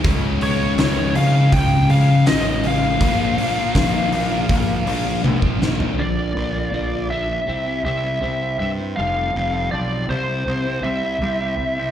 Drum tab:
HH |o-o-o-o-o-o-o-o-|o-o-o-o-o-o-----|----------------|----------------|
SD |----o-------o---|----o---------o-|----------------|----------------|
T1 |----------------|------------o---|----------------|----------------|
FT |----------------|---------------o|----------------|----------------|
BD |o-------o-------|o---o---o----o--|----------------|----------------|